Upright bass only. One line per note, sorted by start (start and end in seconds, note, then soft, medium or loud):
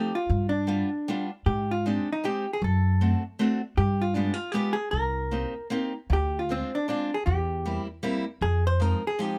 0.30 0.80 G2 medium
1.46 1.97 G#2 medium
2.62 3.12 F#2 medium
3.77 4.27 G2 medium
4.93 5.44 C2 medium
6.10 6.61 D2 loud
7.27 7.76 E2 loud
8.41 8.91 F2 medium